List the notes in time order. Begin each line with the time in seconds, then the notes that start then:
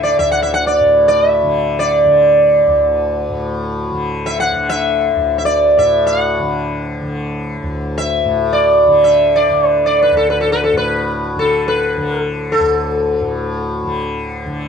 Already playing: D2 A2 D3
0.03 D5
0.19 D2 E5
0.31 F#5
0.42 E5
0.54 F#5
0.67 D5
0.80 A2
1.08 D5
1.30 E5
1.43 D3
1.79 D5
2.05 D3
2.67 D2
3.29 A2
3.91 D3
4.26 E5
4.40 F#5
4.53 D3
4.69 E5
5.15 D2
5.38 E5
5.45 D5
5.77 A2 E5
6.07 F#5
6.40 D3
7.01 D3
7.63 D2
7.98 E5
8.25 A2
8.53 D5
8.87 D3
9.04 E5
9.36 D5
9.50 D3
9.71 B4
9.86 D5
10.03 B4
10.11 D2
10.17 A4
10.30 B4
10.41 A4
10.52 B4
10.64 A4
10.73 A2
10.77 B4
11.36 D3 A4
11.68 B4
11.97 D3
12.14 A#4
12.26 A4
12.52 A4
12.60 D2
13.21 A2
13.84 D3
14.46 D3